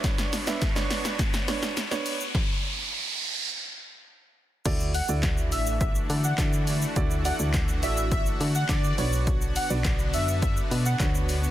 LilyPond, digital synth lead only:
\new Staff \with { instrumentName = "Digital synth lead" } { \time 4/4 \key d \major \tempo 4 = 104 r1 | r1 | r8 fis''16 r8. e''8 e''16 r8 fis''16 r4 | r8 fis''16 r8. e''8 e''16 r8 fis''16 d''8. r16 |
r8 fis''16 r8. e''8 e''16 r8 fis''16 r4 | }